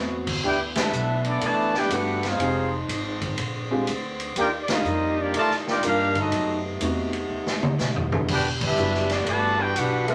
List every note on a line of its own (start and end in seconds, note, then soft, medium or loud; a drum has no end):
0.00 0.41 E2 medium
0.00 0.39 E3 medium
0.00 0.23 A3 medium
0.00 0.23 B3 medium
0.00 0.42 B3 medium
0.00 0.23 C4 medium
0.00 0.43 C4 medium
0.00 0.24 E4 medium
0.00 0.23 F#4 medium
0.00 0.42 F#4 medium
0.27 kick medium
0.27 crash medium
0.44 0.91 D2 medium
0.44 2.38 E3 medium
0.44 2.38 A3 medium
0.44 2.38 B3 medium
0.44 0.58 D4 medium
0.44 0.59 E4 medium
0.44 0.60 E4 medium
0.44 0.59 G4 medium
0.44 0.60 B4 medium
0.44 0.60 D5 medium
0.44 0.60 G5 loud
0.75 1.22 E3 medium
0.75 0.91 A3 medium
0.75 0.91 B3 medium
0.75 1.22 B3 medium
0.75 0.91 D4 medium
0.75 1.22 D4 medium
0.75 1.21 E4 medium
0.75 0.92 E4 medium
0.75 0.92 G4 medium
0.75 1.22 A4 medium
0.75 1.22 B4 medium
0.75 1.22 E5 medium
0.75 snare loud
0.75 ride medium
0.92 1.40 B1 loud
0.92 hi-hat pedal medium
1.25 1.41 E3 medium
1.25 1.42 B3 medium
1.25 1.43 B3 medium
1.25 1.42 D4 medium
1.25 1.43 E4 medium
1.25 1.43 A4 medium
1.25 1.43 D5 loud
1.25 ride medium
1.41 1.89 A1 medium
1.41 1.74 D3 loud
1.41 1.74 E3 medium
1.41 1.74 A3 loud
1.41 1.75 E4 loud
1.41 1.75 B4 loud
1.41 1.76 D5 loud
1.41 1.75 A5 loud
1.41 ride medium
1.74 1.92 D4 medium
1.74 1.92 E4 medium
1.74 1.92 G4 medium
1.74 1.92 B4 medium
1.74 1.92 D5 medium
1.74 1.92 G5 loud
1.74 snare soft
1.89 2.38 G1 loud
1.89 2.20 A3 medium
1.89 2.20 B3 medium
1.89 2.20 D4 medium
1.89 2.20 E4 medium
1.89 2.24 F#4 medium
1.89 2.21 A4 medium
1.89 hi-hat pedal medium
1.89 ride medium
1.93 2.25 D4 medium
1.93 2.24 G4 medium
1.93 2.25 B4 medium
1.93 2.25 F#5 loud
2.23 2.73 G#3 medium
2.23 2.73 C4 medium
2.23 2.73 F4 medium
2.23 snare soft
2.23 ride medium
2.28 2.75 D#4 medium
2.28 2.75 G#4 medium
2.28 2.75 C5 medium
2.28 2.75 F5 medium
2.39 2.87 F1 medium
2.39 3.38 F3 medium
2.39 4.34 G#3 medium
2.39 2.69 G#3 medium
2.39 2.69 C4 medium
2.39 3.38 D#4 medium
2.39 2.69 D#4 medium
2.39 2.70 F4 medium
2.39 2.70 G4 medium
2.39 ride medium
2.88 3.36 G#1 loud
2.88 hi-hat pedal medium
2.88 ride medium
3.22 kick medium
3.22 ride medium
3.37 3.86 A#1 medium
3.37 4.35 D3 medium
3.37 4.35 C4 medium
3.37 ride medium
3.71 3.86 G#3 medium
3.71 3.86 C4 medium
3.71 3.86 D4 medium
3.71 3.86 F4 medium
3.71 3.86 G4 medium
3.87 4.35 D2 medium
3.87 hi-hat pedal medium
3.87 ride medium
4.20 ride medium
4.36 4.84 D#2 loud
4.36 6.15 D#3 medium
4.36 6.15 G3 medium
4.36 4.48 A#3 medium
4.36 4.47 D4 medium
4.36 6.15 D#4 medium
4.36 6.15 F4 medium
4.36 4.48 G4 medium
4.36 ride medium
4.40 4.50 F4 medium
4.40 4.50 A#4 medium
4.40 4.49 D5 medium
4.40 4.50 G5 loud
4.62 4.70 D5 medium
4.68 5.17 G3 medium
4.68 4.84 G3 medium
4.68 5.17 A#3 medium
4.68 4.84 A#3 medium
4.68 4.84 D4 medium
4.68 5.18 D#4 medium
4.68 4.85 D#4 medium
4.68 4.85 F4 loud
4.68 snare loud
4.68 ride medium
4.73 5.18 A#3 medium
4.73 5.19 F4 medium
4.73 5.19 G4 medium
4.73 5.20 D#5 loud
4.84 5.33 F2 loud
4.84 hi-hat pedal medium
5.18 5.35 G3 medium
5.18 5.35 A#3 medium
5.18 5.36 A#3 medium
5.18 5.35 D4 medium
5.18 5.36 F4 medium
5.18 5.36 G4 medium
5.18 5.36 D5 medium
5.34 5.82 A2 medium
5.34 5.51 A3 loud
5.34 5.51 F4 loud
5.34 ride medium
5.38 5.52 A#4 loud
5.38 5.52 D5 medium
5.38 5.52 A5 loud
5.50 snare soft
5.67 5.83 A#3 medium
5.67 5.82 D4 medium
5.67 5.84 F4 medium
5.67 5.83 G4 medium
5.67 5.84 A#4 medium
5.67 5.84 D5 medium
5.67 5.84 G5 loud
5.67 snare medium
5.83 6.31 G2 loud
5.83 6.13 G3 medium
5.83 6.13 A#3 medium
5.83 6.14 A#3 medium
5.83 6.13 D4 medium
5.83 6.14 D4 medium
5.83 6.15 D4 medium
5.83 6.13 D#4 medium
5.83 6.14 F4 medium
5.83 6.13 F4 medium
5.83 6.15 G4 medium
5.83 6.15 A#4 medium
5.83 6.15 F5 loud
5.83 hi-hat pedal medium
5.83 ride medium
6.15 6.62 F#3 medium
6.15 6.62 A3 medium
6.15 6.63 C4 medium
6.15 6.62 D#4 medium
6.15 6.63 F#4 medium
6.15 6.63 D#5 medium
6.15 kick medium
6.15 ride medium
6.19 6.63 A4 medium
6.32 6.80 F#2 loud
6.32 8.27 C3 medium
6.32 8.27 A3 medium
6.32 8.27 B3 medium
6.32 8.27 D#4 medium
6.32 ride medium
6.81 7.28 E2 medium
6.81 7.11 A3 medium
6.81 7.11 B3 medium
6.81 7.11 C4 medium
6.81 7.11 D#4 medium
6.81 7.12 F#4 medium
6.81 hi-hat pedal medium
6.81 ride medium
7.13 ride medium
7.29 7.77 D#2 medium
7.47 snare medium
7.63 high tom medium
7.78 8.27 B1 medium
7.78 snare medium
7.78 hi-hat pedal medium
7.96 floor tom medium
8.12 8.27 G3 medium
8.12 8.27 B3 medium
8.12 8.28 D4 medium
8.12 8.28 E4 medium
8.12 8.28 A4 medium
8.12 floor tom loud
8.28 8.76 E1 medium
8.28 10.15 E3 medium
8.28 10.15 G3 medium
8.28 8.45 B3 medium
8.28 10.15 D4 medium
8.28 8.45 D4 medium
8.28 8.46 F#4 medium
8.28 10.15 G4 medium
8.28 8.45 G4 medium
8.28 kick medium
8.28 crash loud
8.32 8.46 D4 medium
8.32 8.46 B4 medium
8.32 8.46 G5 medium
8.61 9.07 G3 medium
8.61 9.07 B3 medium
8.61 9.08 D4 medium
8.61 9.08 E4 medium
8.61 9.09 G4 medium
8.61 9.08 B4 medium
8.61 9.09 E5 loud
8.61 kick medium
8.61 crash medium
8.76 9.25 F#1 loud
8.76 9.07 G3 medium
8.76 9.07 B3 medium
8.76 9.08 D4 medium
8.76 9.08 E4 medium
8.76 9.08 F#4 medium
8.76 hi-hat pedal medium
8.94 snare soft
9.09 9.28 G3 medium
9.09 9.28 B3 medium
9.09 9.29 B3 medium
9.09 9.27 D4 medium
9.09 9.28 F#4 medium
9.09 9.29 G4 medium
9.09 9.28 D5 medium
9.09 snare medium
9.09 ride medium
9.26 9.74 G1 medium
9.26 9.59 A3 medium
9.26 ride medium
9.30 9.59 F#4 loud
9.30 9.59 B4 loud
9.30 9.61 D5 loud
9.30 9.61 A5 loud
9.58 9.74 B3 medium
9.58 9.74 D4 medium
9.58 9.76 D4 medium
9.58 9.77 F#4 medium
9.58 9.76 G4 medium
9.58 9.74 B4 medium
9.58 9.77 G5 loud
9.75 10.15 B1 loud
9.75 10.08 B3 medium
9.75 10.08 D4 medium
9.75 10.09 D4 medium
9.75 10.08 F#4 medium
9.75 10.07 G4 medium
9.75 10.08 B4 medium
9.75 10.09 F#5 loud
9.75 hi-hat pedal medium
9.75 ride medium
10.06 10.15 G3 medium
10.06 10.15 B3 medium
10.06 10.15 C4 medium
10.06 10.15 E4 medium
10.06 10.15 G4 medium
10.06 10.15 A4 medium
10.06 10.15 E5 medium
10.06 ride medium